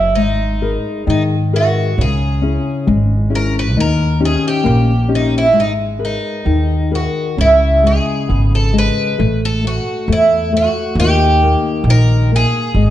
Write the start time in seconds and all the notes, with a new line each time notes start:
Already playing: F#1 F#3 E4
0.15 G#1 G#3 D#4
0.62 G#4 A#4 B4
1.07 G#2 D#3 D#4
1.53 F#4 G#4 A#4 B4
1.98 C#2 C#3 G#4
2.42 C#4 E4 G#4
2.87 G#1 G#3
3.30 C#4 E4 G#4
3.35 A#4
3.59 B4
3.77 D#2 D#3 A#4
4.20 C#4 D#4 G4
4.25 G#4
4.48 G4
4.64 A#1 A#3
5.08 C#4 D#4 G4
5.15 D#4
5.38 E4
5.53 G#1 G#3
5.60 D#4
5.99 G#4 A#4 B4
6.05 D#4
6.45 D#2 D#3
6.91 G#4 A#4 B4
6.95 F#4
7.37 C#2 C#3 E4
7.83 G#3 G#4
8.29 G#1 B3
8.55 A4
8.73 G#3
8.78 B4
9.18 A1 A3
9.45 A4
9.64 A3 F#4
10.08 E2 A3
10.12 E4
10.53 A3
10.57 F#4
10.95 D#2 D#3
11.00 G4
11.43 A#3
11.84 A#1 D#3
11.90 A#4
12.32 A#3 G#4
12.74 G#1 G#3